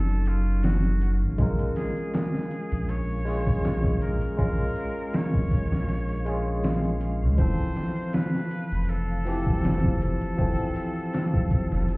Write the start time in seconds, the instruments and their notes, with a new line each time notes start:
Already playing: sub bass F#1, tine electric piano F#3 C#4 D#4 A4, muted trumpet A4
0.09 closed hi-hat
0.26 muted trumpet F4, closed hi-hat
0.63 muted trumpet F#4, snare, closed hi-hat
0.84 closed hi-hat
1.01 closed hi-hat
1.21 sub bass A1
1.38 sub bass A#1, tine electric piano G#3 C#4 F4, synth texture F5, kick, closed hi-hat
1.42 tine electric piano A#4
1.59 closed hi-hat
1.76 muted trumpet G#4, snare, closed hi-hat
1.97 closed hi-hat
2.14 muted trumpet G#4, snare, closed hi-hat
2.34 snare
2.51 closed hi-hat
2.72 sub bass A#1, closed hi-hat
2.89 muted trumpet C#5, closed hi-hat
3.25 tine electric piano G#3 C#4 F4 G#4, open hi-hat
3.47 kick
3.64 snare, closed hi-hat
3.84 kick
4.02 muted trumpet A#4, closed hi-hat
4.21 closed hi-hat
4.37 sub bass A#1, tine electric piano G#3 C#4 F4 A#4, muted trumpet A#4, kick, closed hi-hat
4.76 closed hi-hat
5.13 muted trumpet C#5, snare, closed hi-hat
5.34 kick
5.51 kick, closed hi-hat
5.72 sub bass A#1, snare
5.88 closed hi-hat
6.09 closed hi-hat
6.25 tine electric piano G#3 C#4 F4 G#4, closed hi-hat
6.64 snare, closed hi-hat
6.84 closed hi-hat
7.01 closed hi-hat
7.21 sub bass C#2
7.38 sub bass F1, tine electric piano E3 F3 C4 A4, muted trumpet C5, kick, closed hi-hat
7.58 closed hi-hat
7.76 snare, closed hi-hat
7.96 closed hi-hat
8.13 muted trumpet B4, snare, closed hi-hat
8.35 snare
8.51 closed hi-hat
8.72 sub bass F1, closed hi-hat
8.89 muted trumpet A4, closed hi-hat
9.25 tine electric piano E3 F3 C4 G4, open hi-hat
9.46 kick
9.64 snare, closed hi-hat
9.84 kick
10.02 muted trumpet A4, closed hi-hat
10.21 closed hi-hat
10.37 sub bass F1, tine electric piano E3 F3 C4, kick, closed hi-hat
10.42 tine electric piano A4
10.76 closed hi-hat
11.14 snare, closed hi-hat
11.34 kick
11.51 kick, closed hi-hat
11.71 sub bass F1, snare
11.88 closed hi-hat